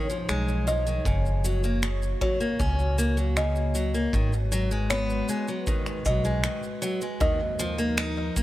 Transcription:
0.00 1.02 F3 medium
0.00 1.02 D#4 medium
0.00 4.10 C#5 medium
0.10 0.27 F3 medium
0.10 shaker soft
0.29 0.98 B1 medium
0.29 0.65 G#3 medium
0.29 finger snap medium
0.29 shaker soft
0.49 shaker soft
0.67 0.84 F3 medium
0.67 1.04 D#5 medium
0.67 shaker medium
0.87 1.05 D#3 medium
0.87 shaker soft
1.05 2.13 F#1 loud
1.05 1.42 C#3 medium
1.05 4.10 A#3 medium
1.05 4.10 F#4 medium
1.05 kick loud
1.05 shaker soft
1.26 shaker soft
1.44 1.62 F#3 medium
1.44 shaker medium
1.64 1.81 A#3 medium
1.64 shaker soft
1.83 2.01 C#3 medium
1.83 finger snap medium
1.83 shaker soft
2.02 shaker soft
2.21 2.38 F#3 medium
2.21 2.58 C#5 medium
2.21 kick loud
2.40 2.58 A#3 medium
2.40 shaker soft
2.59 4.05 C#2 loud
2.59 2.96 C#4 medium
2.59 kick loud
2.59 shaker soft
2.79 shaker soft
2.98 3.15 A#3 medium
2.98 shaker medium
3.17 3.35 F#3 medium
3.17 shaker soft
3.36 3.73 C#3 medium
3.36 3.73 D#5 medium
3.36 finger snap medium
3.36 shaker soft
3.56 shaker soft
3.75 3.92 F#3 medium
3.75 shaker medium
3.94 4.12 A#3 medium
3.94 shaker soft
4.13 5.20 G#1 loud
4.13 4.32 D#3 medium
4.13 7.18 G#3 medium
4.13 7.18 F#4 medium
4.13 7.18 B4 medium
4.13 kick loud
4.13 shaker soft
4.33 shaker soft
4.52 4.69 F#3 medium
4.52 shaker medium
4.71 4.88 G#3 medium
4.71 shaker soft
4.90 5.27 B3 loud
4.90 5.27 C#5 loud
4.90 finger snap medium
4.90 shaker soft
5.10 shaker soft
5.29 5.46 G#3 medium
5.29 shaker medium
5.48 5.66 F#3 medium
5.48 shaker soft
5.67 6.04 D#3 medium
5.67 kick loud
5.67 shaker soft
5.86 finger snap soft
5.86 shaker soft
6.05 6.44 B1 medium
6.05 6.23 F#3 medium
6.05 6.42 D#5 medium
6.05 kick medium
6.05 shaker medium
6.25 6.42 G#3 medium
6.25 shaker soft
6.44 6.62 D#3 medium
6.44 finger snap medium
6.44 shaker soft
6.63 shaker soft
6.82 7.00 F#3 medium
6.82 shaker medium
7.02 7.19 G#3 medium
7.02 shaker soft
7.20 8.28 D#2 loud
7.20 7.39 D#3 medium
7.20 8.43 F3 medium
7.20 8.43 D#4 medium
7.20 8.43 A#4 medium
7.20 7.58 D#5 loud
7.20 kick loud
7.20 shaker soft
7.59 7.77 F3 loud
7.59 shaker medium
7.78 7.96 A#3 medium
7.78 shaker soft
7.97 8.34 D#4 loud
7.97 finger snap loud
7.97 shaker soft
8.36 8.43 A#3 medium
8.36 kick loud
8.36 shaker medium

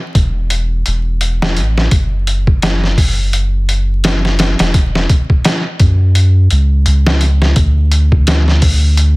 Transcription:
0.15 0.83 E1 medium
0.15 kick medium
0.15 closed hi-hat medium
0.50 closed hi-hat medium
0.86 1.59 E1 medium
0.86 closed hi-hat medium
1.21 closed hi-hat medium
1.42 snare loud
1.57 1.89 A1 loud
1.57 closed hi-hat medium
1.78 snare soft
1.91 4.56 F#1 medium
1.91 kick loud
1.91 closed hi-hat medium
2.27 closed hi-hat medium
2.47 kick medium
2.62 snare loud
2.62 closed hi-hat medium
2.84 snare soft
2.98 kick medium
2.98 open hi-hat medium
3.33 closed hi-hat medium
3.69 closed hi-hat medium
4.04 snare loud
4.04 closed hi-hat medium
4.25 snare soft
4.39 snare loud
4.39 closed hi-hat medium
4.59 5.07 E1 medium
4.59 snare medium
4.59 closed hi-hat medium
4.74 kick loud
4.74 closed hi-hat medium
4.95 snare medium
5.09 kick loud
5.09 closed hi-hat medium
5.30 kick medium
5.45 snare loud
5.45 closed hi-hat medium
5.80 6.48 F#2 medium
5.80 kick medium
5.80 closed hi-hat medium
6.15 closed hi-hat medium
6.50 6.86 C#2 medium
6.50 closed hi-hat medium
6.86 7.54 C#2 medium
6.86 closed hi-hat medium
7.06 snare loud
7.21 closed hi-hat medium
7.42 snare soft
7.56 9.17 D2 medium
7.56 kick loud
7.56 closed hi-hat medium
7.92 closed hi-hat medium
8.12 kick medium
8.27 snare loud
8.27 closed hi-hat medium
8.48 snare soft
8.62 kick medium
8.62 open hi-hat medium
8.97 closed hi-hat medium

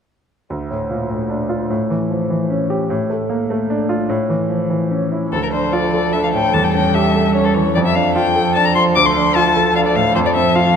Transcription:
0.50 1.67 D2 soft
0.70 1.02 A2 soft
0.91 1.10 A#2 soft
1.10 1.42 A2 soft
1.30 1.62 D4 soft
1.49 1.70 F4 soft
1.70 2.86 A2 soft
1.90 2.22 E3 soft
2.11 2.30 F3 soft
2.30 2.62 E3 soft
2.50 2.82 C#4 soft
2.70 2.90 G4 soft
2.90 4.05 A2 soft
3.10 3.41 A3 soft
3.29 3.49 A#3 soft
3.50 3.81 A3 soft
3.70 4.01 D4 soft
3.89 4.09 F4 soft
4.09 5.29 A2 soft
4.30 4.61 E3 soft
4.50 4.70 F3 soft
4.70 5.03 E3 soft
4.91 5.24 C#4 soft
5.12 5.32 E4 soft
5.32 6.51 D2 soft
5.32 6.50 F3 soft
5.32 7.71 A4 soft
5.32 5.42 A4 medium
5.43 5.47 A#4 soft
5.52 5.85 D4 soft
5.52 5.74 C5 soft
5.72 6.05 F4 soft
5.72 6.14 D5 medium
5.93 6.26 A4 soft
6.13 6.46 D4 soft
6.13 6.23 E5 medium
6.24 6.28 F5 soft
6.33 6.54 A2 soft
6.33 6.55 G5 medium
6.53 7.72 E2 soft
6.53 7.73 G3 soft
6.53 6.66 A5 medium
6.64 6.73 G5 medium
6.74 7.07 C#4 soft
6.74 6.96 G5 medium
6.94 7.27 G4 soft
6.94 7.34 E5 medium
7.16 7.48 A4 soft
7.35 7.67 C#4 soft
7.35 7.47 C#5 medium
7.45 7.56 A4 medium
7.54 7.76 E3 soft
7.54 7.74 C#5 medium
7.75 8.92 F2 medium
7.75 10.12 F3 soft
7.75 10.11 A4 soft
7.75 7.79 D5 medium
7.86 7.96 E5 medium
7.95 8.28 D4 soft
7.95 8.14 F5 medium
8.15 8.48 F4 soft
8.15 8.54 G5 medium
8.35 8.67 A4 soft
8.55 8.88 D4 soft
8.55 8.67 A5 medium
8.65 8.74 A#5 medium
8.75 8.96 F3 soft
8.75 8.83 C6 medium
8.96 10.12 D2 soft
8.96 9.07 D6 medium
9.06 9.14 C6 medium
9.15 9.48 D4 soft
9.15 9.36 C6 medium
9.35 9.68 F4 soft
9.35 9.75 A5 medium
9.56 9.88 A4 soft
9.75 10.07 D4 soft
9.75 9.80 F5 medium
9.86 9.97 D5 medium
9.96 10.15 A2 soft
9.96 10.14 F5 medium
10.15 10.76 F2 medium
10.15 10.76 F3 medium
10.15 10.76 A4 medium
10.15 10.19 C5 medium
10.26 10.30 D5 medium
10.35 10.67 C4 soft
10.35 10.57 E5 medium
10.55 10.76 F4 soft
10.55 10.76 F5 medium

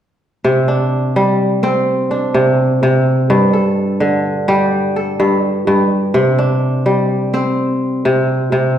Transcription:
0.44 2.33 C3 medium
0.68 2.10 D4 medium
1.16 3.34 G3 medium
1.63 3.43 C4 medium
2.11 3.79 D4 medium
2.34 2.82 C3 medium
2.83 3.34 C3 medium
3.30 5.18 G2 medium
3.53 4.85 A4 medium
4.00 6.19 D3 medium
4.48 6.19 G3 medium
4.48 5.89 G4 medium
4.96 6.28 A4 medium
5.20 5.66 G2 medium
5.67 6.19 G2 medium
6.14 8.04 C3 medium
6.38 8.06 D4 medium
6.86 8.79 G3 medium
7.34 8.79 C4 medium
8.05 8.51 C3 medium
8.52 8.79 C3 medium

